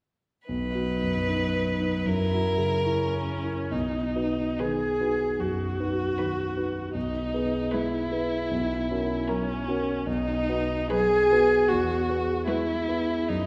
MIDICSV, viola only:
0, 0, Header, 1, 2, 480
1, 0, Start_track
1, 0, Key_signature, 5, "major"
1, 0, Tempo, 795756
1, 293, Time_signature, 4, 2, 24, 8
1, 1725, Tempo, 872093
1, 2685, Tempo, 806452
1, 3165, Tempo, 777202
1, 6045, Tempo, 835655
1, 6525, Tempo, 783290
1, 7485, Tempo, 818554
1, 8064, End_track
2, 0, Start_track
2, 0, Title_t, "Viola"
2, 0, Program_c, 0, 41
2, 296, Note_on_c, 0, 63, 36
2, 1239, Note_on_c, 0, 64, 46
2, 1249, Note_off_c, 0, 63, 0
2, 1719, Note_off_c, 0, 64, 0
2, 1722, Note_on_c, 0, 61, 61
2, 2199, Note_on_c, 0, 63, 52
2, 2208, Note_off_c, 0, 61, 0
2, 2679, Note_on_c, 0, 68, 60
2, 2687, Note_off_c, 0, 63, 0
2, 3160, Note_on_c, 0, 66, 50
2, 3169, Note_off_c, 0, 68, 0
2, 4113, Note_off_c, 0, 66, 0
2, 4116, Note_on_c, 0, 63, 59
2, 4600, Note_on_c, 0, 64, 55
2, 4610, Note_off_c, 0, 63, 0
2, 5559, Note_on_c, 0, 61, 64
2, 5569, Note_off_c, 0, 64, 0
2, 6041, Note_on_c, 0, 63, 69
2, 6050, Note_off_c, 0, 61, 0
2, 6521, Note_off_c, 0, 63, 0
2, 6524, Note_on_c, 0, 68, 83
2, 7003, Note_on_c, 0, 66, 68
2, 7013, Note_off_c, 0, 68, 0
2, 7474, Note_off_c, 0, 66, 0
2, 7477, Note_on_c, 0, 64, 68
2, 7956, Note_on_c, 0, 63, 65
2, 7965, Note_off_c, 0, 64, 0
2, 8064, Note_off_c, 0, 63, 0
2, 8064, End_track
0, 0, End_of_file